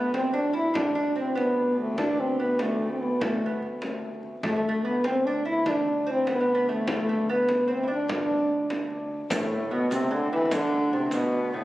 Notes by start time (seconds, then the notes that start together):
Already playing: D2 B3
0.14 C4, frame drum
0.33 D4
0.53 E4
0.74 D4, frame drum
0.95 D4
1.16 C4
1.35 B3, frame drum
1.79 A3
1.98 D4, frame drum
2.20 C4
2.40 B3
2.59 A3, frame drum
2.90 C4
3.01 B3
3.21 A3, frame drum
3.46 B3
3.63 frame drum
3.82 frame drum
4.23 frame drum
4.43 D2 A3, frame drum
4.56 A3
4.69 A3
4.84 B3
5.04 C4, frame drum
5.27 D4
5.45 E4
5.66 D4, frame drum
6.07 C4
6.11 C4
6.27 B3, frame drum
6.31 B3
6.40 B3
6.55 B3
6.69 A3
6.87 A3, frame drum
7.09 A3
7.29 B3
7.49 frame drum
7.68 C4
7.72 C4
7.83 E4
7.88 D4
7.92 D4
8.08 D4, frame drum
8.50 frame drum
8.70 frame drum
8.90 frame drum
9.30 D2 A2 A3, riq, frame drum
9.71 B2 B3
9.90 C3 C4, riq, frame drum
10.11 D3
10.32 E3
10.45 E3
10.51 D3 D4, riq, frame drum
10.93 C3
11.06 C4
11.11 B2 B3, riq, frame drum
11.54 A2